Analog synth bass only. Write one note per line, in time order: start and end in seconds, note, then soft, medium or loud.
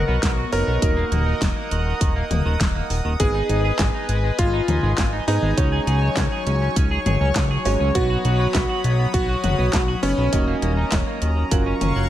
0.08 0.19 B1 loud
0.23 0.45 B1 medium
0.52 0.64 F#1 medium
0.67 0.78 B1 medium
0.82 1.05 D#1 loud
1.12 1.34 D#1 loud
1.42 1.53 D#1 medium
1.71 1.94 D#1 medium
2.01 2.23 D#1 medium
2.31 2.42 D#1 medium
2.45 2.57 D#1 medium
2.60 2.83 D#1 medium
2.90 3.01 D#1 medium
3.05 3.16 D#1 medium
3.20 3.42 G#1 loud
3.49 3.72 G#1 loud
3.79 3.90 G#1 loud
4.09 4.31 G#1 medium
4.39 4.61 G#1 medium
4.68 4.79 D#2 medium
4.83 4.94 G#1 loud
4.98 5.20 G#1 medium
5.28 5.39 G#2 medium
5.42 5.54 G#1 medium
5.58 5.80 C#2 loud
5.87 6.09 C#2 loud
6.17 6.28 C#2 loud
6.47 6.69 C#2 medium
6.76 6.99 C#2 medium
7.06 7.17 G#1 medium
7.21 7.32 C#2 loud
7.36 7.58 C#2 medium
7.65 7.77 G#1 medium
7.80 7.91 C#2 medium
7.95 8.17 B1 loud
8.25 8.47 B1 loud
8.55 8.66 B1 medium
8.84 9.06 B1 medium
9.14 9.36 B1 medium
9.44 9.55 F#1 medium
9.58 9.70 B1 loud
9.73 9.96 B1 medium
10.03 10.14 F#1 medium
10.18 10.29 B1 medium
10.33 10.55 D#1 loud
10.62 10.85 D#1 loud
10.92 11.03 D#1 loud
11.22 11.44 D#1 medium
11.51 11.74 F#1 medium
11.81 11.92 F#1 loud
11.96 12.07 F#1 medium